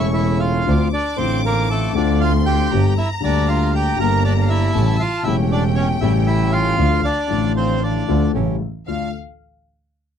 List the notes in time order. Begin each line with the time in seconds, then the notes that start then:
Already playing: E1 E2 C#3 E3 A3 C#4 E4 C#6
0.14 E4 E5
0.40 F4 F5
0.66 D2 D3 A3 C4 D4 F4 D6
0.93 D4 D5
1.16 A1 A2 D3 A3 C4 D4 F4 C5
1.46 A#3 A#4
1.70 A3 A4
1.94 D2 D3 A3 C4 D4 F4 D5
2.20 F4 F5 C6
2.46 G4 G5
2.70 G1 G2 D3 G3 A#3 D4 G4 A#5
2.98 E4 E5
3.20 D2 D3 G3 A#3 D4 G4 D5
3.26 D4
3.48 F4 F5
3.73 G4 G5 A#5
3.96 G1 G2 D3 G3 A#3 D4 G4 A#4 A#5
4.01 G4
4.25 D4 D5
4.42 F5
4.49 E4 E5
4.74 A1 A2 C#3 G3 A3 C#4 E4 G4 A5
5.00 F4 F5
5.23 E1 E2 C#3 G3 A3 C#4 E4 G4 E5 G5
5.52 D4 D5
5.75 C#4 C#5
6.01 A1 A2 C#3 G3 A3 C#4 E4 G4 E5
6.05 E4
6.27 E4 E5
6.52 F4 F5
6.78 D2 D3 F3 A3 D4 F4 F5
7.05 D4 D5
7.28 A1 A2 D3 F3 A3 D4 F4 F5
7.33 F4
7.57 C4 C5
7.83 D4 D5
8.08 D2 D3 F3 A3 D4 F4
8.34 A1 A2 C#3 G3 A3 C#4 E4 G4
8.87 D2 A3 D4 F4 F5